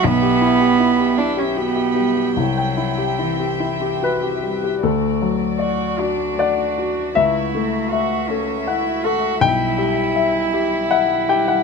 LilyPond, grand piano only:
\new Staff \with { instrumentName = "Grand piano" } { \time 3/4 \key d \major \tempo 4 = 79 << { r2. | r2 b'4 | a'2 d''4 | e''2 r4 |
g''2 fis''8 g''16 fis''16 | } \\ { b,,16 g'16 e'16 g'16 e'16 g'16 e'16 g'16 fis'16 g'16 g16 g'16 | c,16 g''16 e'16 g'16 e'16 g'16 e'16 g'16 fis'16 g'16 g16 g'16 | d,8 fis8 d''8 fis'8 fis''8 fis'8 | cis,8 a8 e''8 a'8 fis''8 a'8 |
b,,8 g8 e''8 g'8 e''8 g'8 | } >> }